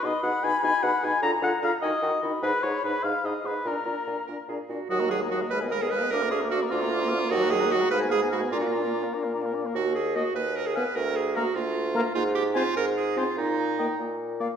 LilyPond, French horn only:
\new Staff \with { instrumentName = "French horn" } { \time 6/8 \key bes \phrygian \tempo 4. = 99 ees'8 ees'8 ees'8 ees'8 ees'8 ees'8 | f'8 f'8 f'8 ees'8 ees'8 ees'8 | ees'8 ees'8 ees'8 ees'8 ees'8 ees'8 | d'8 d'8 d'8 d'8 d'8 d'8 |
ges16 bes16 ges16 bes16 ges16 bes16 aes16 ces'16 aes16 ces'16 aes16 ces'16 | d'16 bes16 d'16 bes16 d'16 bes16 d'16 bes16 d'16 bes16 d'16 bes16 | ges16 bes16 ges16 bes16 ges16 bes16 aes16 ces'16 aes16 ces'16 aes16 ces'16 | d'16 bes16 d'16 bes16 d'16 bes16 d'16 bes16 d'16 bes16 d'16 bes16 |
r4 bes16 r4 r16 ces'16 r16 | r4 bes16 r4 r16 bes16 r16 | \key ees \major r4 c'16 r4 r16 c'16 r16 | r4 bes16 r4 r16 bes16 r16 | }